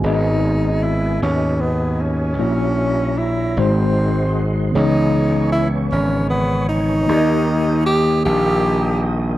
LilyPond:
<<
  \new Staff \with { instrumentName = "Tonewheel organ" } { \time 6/8 \key gis \minor \tempo 4. = 51 << { <b' dis'' gis''>2. | <cis'' e'' ais''>4. <dis'' fis'' bis''>4. | <cis'' gis'' cis'''>2. | <dis'' g'' dis'''>2. | } \\ { fis'2.~ | fis'4. gis'4. | b'2. | ais'2. | } >> }
  \new Staff \with { instrumentName = "Tine electric piano" } { \time 6/8 \key gis \minor <b fis' gis' dis''>2. | <ais e' fis' cis''>4. <gis dis' fis' bis'>4. | <e b gis' cis''>2. | <ais dis' g' d'' dis''>2. | }
  \new Staff \with { instrumentName = "Tine electric piano" } { \clef bass \time 6/8 \key gis \minor gis,4. r4. | ais,4. gis,4. | cis4. r4. | dis4. r4. | }
  \new Staff \with { instrumentName = "Tenor saxophone" } { \time 6/8 \key gis \minor dis'4 e'8 cis'8 b8 cis'8~ | cis'4 e'8 bis4 r8 | dis'4 e'8 cis'8 b8 dis'8~ | dis'4 g'8 g'4 r8 | }
  \new Staff \with { instrumentName = "Slap bass" } { \clef bass \time 6/8 \key gis \minor gis,,4. dis,4. | ais,,4. gis,,4. | cis,4. gis,,4. | dis,4. ais,,4. | }
>>